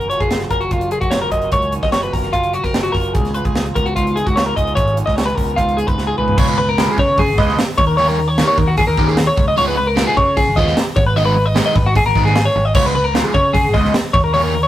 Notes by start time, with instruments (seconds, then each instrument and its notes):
Already playing: picked electric bass F#1, clean electric guitar F#2 F#3 F#4 A#4
0.01 closed hi-hat
0.10 clean electric guitar F4 C#5, closed hi-hat
0.20 picked electric bass F#1, clean electric guitar G#4, kick, closed hi-hat
0.31 clean electric guitar F#3, snare, closed hi-hat
0.40 snare, closed hi-hat
0.50 picked electric bass F#1, clean electric guitar C#4 A#4, kick, closed hi-hat
0.61 clean electric guitar F#4, closed hi-hat
0.71 picked electric bass F#1, clean electric guitar C#3 F4, kick, closed hi-hat
0.81 closed hi-hat
0.90 clean electric guitar F#3 G#4, closed hi-hat
1.01 picked electric bass F#1, clean electric guitar F#4, kick, closed hi-hat
1.11 clean electric guitar F4 C#5, snare, closed hi-hat
1.22 clean electric guitar A#4
1.32 picked electric bass F#1, clean electric guitar A#4 D#5, kick, closed hi-hat
1.42 closed hi-hat
1.52 picked electric bass C#2, clean electric guitar F#2 C#5, kick, closed hi-hat
1.62 closed hi-hat
1.72 clean electric guitar D#4, closed hi-hat
1.83 picked electric bass F#1, clean electric guitar F4 D#5, kick, snare
1.92 clean electric guitar F#3 C#5, snare, closed hi-hat
2.03 clean electric guitar B4, closed hi-hat
2.13 picked electric bass F#1, clean electric guitar B3 A#4, kick, open hi-hat
2.24 clean electric guitar C#4, snare, closed hi-hat
2.33 picked electric bass F#1, clean electric guitar C#3 F4, kick, closed hi-hat
2.43 closed hi-hat
2.53 clean electric guitar F#3 F#4, closed hi-hat
2.64 picked electric bass F#1, clean electric guitar A#4, kick, snare, closed hi-hat
2.74 clean electric guitar F4, snare, closed hi-hat
2.83 clean electric guitar F#4, closed hi-hat
2.92 picked electric bass F#1, clean electric guitar A#4, kick, open hi-hat
3.05 closed hi-hat
3.13 picked electric bass C#2, clean electric guitar C#3 G#4, kick, closed hi-hat
3.25 snare, closed hi-hat
3.34 clean electric guitar F4 B4, closed hi-hat
3.45 picked electric bass C#2, clean electric guitar G#4, kick, closed hi-hat
3.55 clean electric guitar G#3, snare, closed hi-hat
3.66 closed hi-hat
3.76 picked electric bass C#2, clean electric guitar B3 A#4, kick, closed hi-hat
3.86 clean electric guitar F#4, closed hi-hat
3.95 picked electric bass C#2, clean electric guitar G#2 F4, kick, closed hi-hat
4.07 closed hi-hat
4.16 clean electric guitar G#3 G#4, closed hi-hat
4.26 picked electric bass C#2, clean electric guitar F#4, kick, closed hi-hat
4.36 clean electric guitar F4 C#5, snare, closed hi-hat
4.46 clean electric guitar A#4
4.56 picked electric bass C#2, clean electric guitar G#4 D#5, kick, closed hi-hat
4.67 closed hi-hat
4.75 picked electric bass G#1, clean electric guitar C#3 C#5, kick, closed hi-hat
4.87 closed hi-hat
4.96 clean electric guitar D#4, closed hi-hat
5.06 picked electric bass C#2, clean electric guitar F4 D#5, kick, snare
5.16 clean electric guitar G#3 C#5, snare, closed hi-hat
5.26 clean electric guitar B4, closed hi-hat
5.35 picked electric bass C#2, clean electric guitar B3 A#4, kick, open hi-hat
5.49 closed hi-hat
5.56 picked electric bass C#2, clean electric guitar G#2 F4, kick, closed hi-hat
5.69 closed hi-hat
5.77 clean electric guitar G#3 G#4, closed hi-hat
5.87 picked electric bass C#2, clean electric guitar B4, kick, closed hi-hat
5.98 clean electric guitar F4, snare
6.07 clean electric guitar G#4
6.18 picked electric bass C#2, clean electric guitar G#4 B4, mid tom
6.28 floor tom
6.38 picked electric bass C#2, overdriven electric guitar G#3 C#4 F4 B4, clean electric guitar C#5, kick, crash
6.48 clean electric guitar B4
6.58 clean electric guitar B4, muted overdriven electric guitar stroke
6.69 clean electric guitar A#4
6.78 overdriven electric guitar G#3 C#4 F4 B4, snare, open hi-hat
6.90 clean electric guitar G#4
6.98 picked electric bass C#3, clean electric guitar C#5, muted overdriven electric guitar stroke, kick
7.17 clean electric guitar G#4, muted overdriven electric guitar stroke, kick, open hi-hat
7.28 picked electric bass G#1
7.38 picked electric bass C#2, overdriven electric guitar G#3 C#4 F4 B4, clean electric guitar D#5, kick, snare
7.49 snare
7.58 muted overdriven electric guitar stroke, snare, open hi-hat
7.78 picked electric bass D#2, clean electric guitar C#5, muted overdriven electric guitar stroke, kick
7.87 clean electric guitar A#4
7.97 overdriven electric guitar D#3 A#3 C#4 G4, clean electric guitar C#5, open hi-hat
8.08 clean electric guitar A#4
8.18 muted overdriven electric guitar stroke
8.28 clean electric guitar C#5
8.38 overdriven electric guitar D#3 A#3 C#4 G4, snare, open hi-hat
8.48 clean electric guitar C#5
8.58 picked electric bass D#2, clean electric guitar A#4, muted overdriven electric guitar stroke, kick
8.67 clean electric guitar F#4
8.77 clean electric guitar G#4, muted overdriven electric guitar stroke, kick, open hi-hat
8.87 picked electric bass D#2, clean electric guitar A#4
8.97 picked electric bass D#2, overdriven electric guitar D#3 A#3 C#4 G4, kick, snare
9.08 clean electric guitar G#4, snare
9.17 muted overdriven electric guitar stroke, snare, open hi-hat
9.27 clean electric guitar C#5
9.37 picked electric bass C#2, muted overdriven electric guitar stroke, kick
9.48 clean electric guitar D#5
9.57 picked electric bass C#2, overdriven electric guitar C#3 G#3 B3 F4, clean electric guitar C#5, open hi-hat
9.68 clean electric guitar B4
9.77 clean electric guitar B4, muted overdriven electric guitar stroke
9.87 clean electric guitar A#4
9.96 overdriven electric guitar C#3 G#3 B3 F4, snare, open hi-hat
10.07 clean electric guitar G#4
10.16 picked electric bass C#3, clean electric guitar C#5, muted overdriven electric guitar stroke, kick
10.37 clean electric guitar G#4, muted overdriven electric guitar stroke, kick, open hi-hat
10.47 picked electric bass G#1
10.56 picked electric bass D#2, overdriven electric guitar C#3 G#3 B3 F4, clean electric guitar D#5, kick, snare
10.67 snare
10.77 muted overdriven electric guitar stroke, snare, open hi-hat
10.96 picked electric bass G#1, clean electric guitar C#5, muted overdriven electric guitar stroke, kick
11.07 clean electric guitar B4
11.16 overdriven electric guitar D#3 G#3 B3 D#4, clean electric guitar D#5, open hi-hat
11.26 clean electric guitar B4
11.36 muted overdriven electric guitar stroke
11.46 clean electric guitar D#5
11.55 overdriven electric guitar D#3 G#3 B3 D#4, snare, open hi-hat
11.66 clean electric guitar D#5
11.76 picked electric bass G#1, clean electric guitar B4, muted overdriven electric guitar stroke, kick
11.86 clean electric guitar F#4
11.96 clean electric guitar G#4, muted overdriven electric guitar stroke, kick, open hi-hat
12.06 picked electric bass G#1, clean electric guitar A#4
12.15 picked electric bass G#1, overdriven electric guitar D#3 G#3 B3 D#4, kick, snare
12.25 clean electric guitar G#4, snare
12.35 muted overdriven electric guitar stroke, snare, open hi-hat
12.45 clean electric guitar C#5
12.56 picked electric bass G#1, muted overdriven electric guitar stroke
12.65 clean electric guitar D#5
12.74 picked electric bass C#2, overdriven electric guitar C#3 G#3 B3 F4, clean electric guitar C#5, kick, crash
12.86 clean electric guitar B4
12.95 clean electric guitar B4, muted overdriven electric guitar stroke
13.04 clean electric guitar A#4
13.14 overdriven electric guitar C#3 G#3 B3 F4, snare, open hi-hat
13.24 clean electric guitar G#4
13.34 picked electric bass C#3, clean electric guitar C#5, muted overdriven electric guitar stroke, kick
13.53 clean electric guitar G#4, muted overdriven electric guitar stroke, kick, open hi-hat
13.64 picked electric bass G#1
13.74 picked electric bass C#2, overdriven electric guitar C#3 G#3 B3 F4, clean electric guitar D#5, kick, snare
13.85 snare
13.94 muted overdriven electric guitar stroke, snare, open hi-hat
14.13 picked electric bass D#2, clean electric guitar C#5, muted overdriven electric guitar stroke, kick
14.24 clean electric guitar A#4
14.34 overdriven electric guitar D#3 A#3 C#4 G4, clean electric guitar C#5, open hi-hat
14.44 clean electric guitar A#4
14.55 muted overdriven electric guitar stroke
14.63 clean electric guitar C#5